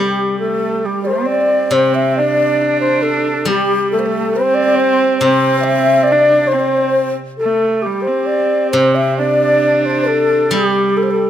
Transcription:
Already playing: C3 G3 G4
0.00 G3 G4
0.39 A3 A4
0.82 G3 G4
1.03 C4 C5 D5
1.26 D5
1.34 C5
1.41 D5
1.71 C3 C4 C5
1.94 E5
2.16 D4 D5
2.77 C5 D5
2.82 C5
3.02 A4
3.45 G3 G4
3.92 A3 A4
3.99 C5
4.06 A4
4.34 C4 C5
4.54 D5
4.59 D5
4.75 C5
4.80 C5
5.17 C3 C5
5.22 C4 C5
5.60 E5
6.03 D5
6.08 D4 D5
6.12 E5
6.21 D5
6.47 C5
6.51 C4 C5
6.60 D5
6.68 C5
6.77 D5
6.84 C5
7.37 A3 A4
7.82 G3 G4
8.02 C5
8.07 C4
8.26 D5
8.70 C3 C5
8.76 C4
8.95 E5
9.18 D4 D5
9.82 C5 D5
10.07 A4
10.51 G3 G4
10.97 A4
11.03 C5
11.11 A4

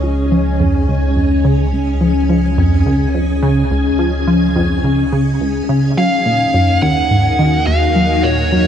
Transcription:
Already playing: C#2 C#4 G#4 D#5 G#5
0.03 F3
0.31 F3
0.60 F2
0.88 C#2
1.16 F2
1.45 C#3
1.73 C#2
2.01 F3
2.29 F3
2.58 F2
2.86 C#2
3.14 F2
3.43 C#3
3.71 C#2
3.99 F3
4.27 F3
4.56 F2
4.84 C#2
5.12 C#3
5.41 C#2
5.69 C#3
5.97 D#2 F#3 D#4 F5
6.25 A#2
6.48 A#4
6.54 F#2
6.82 D#2 F#5
7.11 G#2
7.32 F#4
7.39 D#3
7.67 D#2 F5
7.95 F#3
8.23 A#2 C#5
8.52 F#2

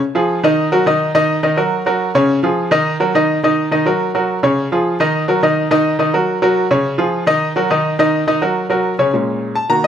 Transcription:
0.15 F3 F4 G#4
0.43 D#3 D#4 D#5
0.72 F#3 F#4 A#4
0.86 D#3 D#4 D#5
1.15 D#3 D#4 D#5
1.43 D#3 D#4 D#5
1.57 F#3 F#4 A#4
1.86 F#3 F#4 A#4
2.15 C#3 C#4 C#5
2.43 F3 F4 G#4
2.71 D#3 D#4 D#5
3.00 F#3 F#4 A#4
3.15 D#3 D#4 D#5
3.43 D#3 D#4 D#5
3.71 D#3 D#4 D#5
3.86 F#3 F#4 A#4
4.15 F#3 F#4 A#4
4.43 C#3 C#4 C#5
4.72 F3 F4 G#4
5.00 D#3 D#4 D#5
5.28 F#3 F#4 A#4
5.43 D#3 D#4 D#5
5.71 D#3 D#4 D#5
5.99 D#3 D#4 D#5
6.14 F#3 F#4 A#4
6.42 F#3 F#4 A#4
6.71 C#3 C#4 C#5
6.98 F3 F4 G#4
7.27 D#3 D#4 D#5
7.56 F#3 F#4 A#4
7.70 D#3 D#4 D#5
7.99 D#3 D#4 D#5
8.27 D#3 D#4 D#5
8.41 F#3 F#4 A#4
8.70 F#3 F#4 A#4
8.99 C#3 C#4 C#5
9.13 A#2 G#3 C#4
9.55 A5
9.70 D#3 A#3 F#4 A#5

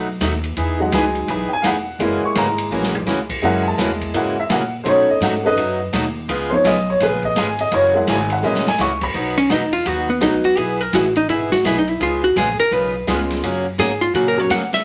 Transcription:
Already playing: B1
0.21 D#2 B2 F#3 A3 D#4 F#4, snare, hi-hat pedal, ride
0.44 ride
0.57 E2 E3 B3 D#4 G#4, ride
0.79 F#3 G#3 D#4 F#5
0.92 C#2 E3 B3 D#4 G#4 G#5, snare, hi-hat pedal, ride
1.15 ride
1.28 B1 E3 B3 D#4 G#4 B5, ride
1.49 G5
1.53 G#5
1.62 E1 E3 B3 D#4 G#4 F5, snare, hi-hat pedal, ride
1.67 F#5
1.99 F#1 C#3 E3 G#3 A#3 C#4 E4 F#4, ride
2.22 C#6, muted upright bass stroke
2.35 G#1 C#3 E3 A#3 C#4 F#4 A#5, snare, hi-hat pedal, ride
2.58 ride
2.71 A#1 C#3 E3 A#3 C#4 F#4
2.83 snare
2.95 floor tom
3.06 C#2 C#3 E3 A#3 C#4 F#4, snare, hi-hat pedal
3.30 kick, crash
3.42 F#2 C#3 E3 G#3 A#3 C#4 E4 F#4 F#5
3.63 G#5
3.68 A5
3.78 E2 C#3 E3 A#3 C#4 F#4, snare, hi-hat pedal, ride
4.01 kick, ride
4.14 G#2 C#3 E3 G#3 A#3 C#4 E4 F#4 F#5, ride
4.40 E5
4.49 A#2 C#3 E3 A#3 C#4 F#4 F#5, snare, hi-hat pedal, ride
4.84 B2 F#3 A3 C#4 D#4 F#4 C5, ride
4.88 C#5
5.11 D#5
5.20 G#2 B2 F#3 A3 D#4 F#4 F#5, snare, hi-hat pedal, ride
5.44 A3 C#4 D#4 B4 D#5
5.56 F#2 B2 F#3 A3 D#4 F#4, ride
5.93 D#2 B2 F#3 A3 D#4 F#4, snare, hi-hat pedal, ride
6.28 C#2 C#3 G#3 B3 F4 G#4, ride
6.49 F3 B3 D#4 C5
6.54 C#5
6.64 B1 C#3 G#3 B3 F4 G#4 D#5, snare, hi-hat pedal, ride
6.90 C#5
7.00 A#1 C#3 G#3 B3 F4 G#4 B4, snare, ride
7.23 D#5, kick
7.35 G#1 C#3 G#3 B3 F4 G#4 G#5, snare, hi-hat pedal, ride
7.59 D#5, ride
7.71 F#1 C#3 E3 A#3 C#4 F#4 C#5, ride
7.94 G#3 A#3 E4 F#5
8.07 G#1 C#3 E3 A#3 C#4 F#4 G#5, snare, hi-hat pedal, ride
8.30 F#5, ride
8.43 A#1 C#3 E3 G#3 A#3 C#4 E4 F#4 D#5
8.55 snare
8.67 G#5, snare
8.78 C#2 C#3 E3 A#3 C#4 F#4 C#6, snare, hi-hat pedal
9.01 B5, kick, crash
9.14 B1 B2 F#3 B3 D#4 F#4
9.38 C#4
9.49 E2 B2 F#3 B3 D#4 F#4, snare, hi-hat pedal, ride
9.73 F4, ride
9.85 D#2 B2 F#3 B3 D#4 F#4, ride
10.10 B3
10.21 C#2 B2 F#3 B3 D#4 F#4 B4, snare, hi-hat pedal, ride
10.44 F#4, ride
10.56 B1 B2 E3 B3 E4 G#4, ride
10.81 A#4
10.93 A1 B2 E3 B3 E4 F#4 G#4, snare, hi-hat pedal, ride
11.16 D#4, ride
11.28 G#1 B2 E3 B3 E4 G#4, ride
11.52 F#4, snare
11.64 B1 B2 E3 B3 E4 G#4, snare, hi-hat pedal, ride
11.78 D#4
11.87 E4, ride
12.00 C#2 C#3 G#3 B3 F4 G#4, ride
12.24 F#4
12.36 A#1 C#3 G#3 B3 F4 G#4, snare, hi-hat pedal, ride
12.59 A#4, muted upright bass stroke, ride
12.71 B1 C#3 G#3 B3 F4 G#4 B4, ride
13.07 C#2 C#3 G#3 B3 C#4 F4 G#4, snare, hi-hat pedal, ride
13.30 snare, ride
13.43 F#2 C#3 F#3 A#3 C#4 F#4, ride
13.78 G#2 C#3 F#3 A#3 C#4 F#4 G#4, snare, hi-hat pedal, ride
14.01 F4, ride
14.14 A#2 C#3 F#3 A#3 C#4 F#4, ride
14.28 A#4
14.37 F#3 A#3 C#4 F#4 A#4 C#5
14.50 C#3 F#3 A#3 C#4 F#4 F#5, snare, hi-hat pedal, ride
14.73 E5, snare, ride

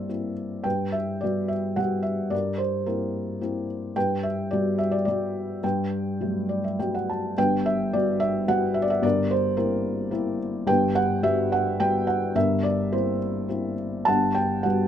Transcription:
Already playing: G2 A#3 C4 E4 A#4 C5 D5 E5
0.09 A#3 C4 E4
0.64 G2 B4 G5
0.92 E5
1.21 G3 B3 F#4 D5
1.48 E5
1.76 G3 B3 F#4 F#5
2.03 E5
2.30 G2 D5
2.34 A#4
2.58 C5
2.86 A#3 C4 E4 A#4
3.41 A#3 C4 E4
3.96 G2 B4 G5
4.23 E5
4.51 G3 B3 F#4 D5
4.78 E5
4.91 D5
5.05 G3 B3 F#4 D5
5.64 G2 B4 G5
6.21 F#3 G3 A3 B3
6.49 D5
6.64 E5
6.79 G3 A3 B3 F#4 G5
6.95 F#5
7.10 A5
7.37 G1 G2 B4 G5
7.66 E5
7.93 G3 B3 F#4 D5
8.20 E5
8.48 G3 B3 F#4 F#5
8.74 E5
8.82 D5
8.90 E5
9.02 G1 G2 A#4 D5
9.31 C5
9.57 A#3 C4 E4 A#4
10.11 A#3 C4 E4
10.67 G1 G2 B4 G5
10.95 F#5
11.23 G3 B3 F#4 E5
11.52 F#5
11.80 G3 B3 F#4 G5
12.07 F#5
12.35 G1 G2 A#4 E5
12.63 D5
12.92 A#3 C4 E4 C5
13.49 A#3 C4 E4
14.05 G1 G2 F#5 A5
14.35 G5
14.63 G3 B3 F#4 F#5

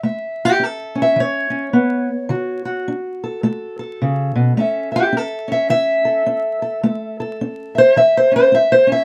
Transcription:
0.03 A3 E5
0.45 G4
0.59 C#4 A4
0.95 C#4
1.02 E5
1.16 E3
1.20 C#5
1.50 C#4
1.73 B3
2.29 D3 F#4
2.65 F#4
2.88 D4
3.24 A4
3.43 A3 A4
3.79 A4
4.02 C#3
4.35 B2
4.57 A3 C#4 A4 E5
4.92 E5
4.96 G4
5.13 C#4
5.17 A4
5.48 C#4 E5
5.70 E3 E5
6.05 A4
6.26 C#4
6.62 A4
6.83 A3 A4
7.20 A4
7.41 C#4
7.75 C5 E5
7.96 E3 E5
8.17 C5
8.32 C#4
8.36 C5
8.52 C#4 E5
8.72 C5
8.87 C#4
8.92 E5

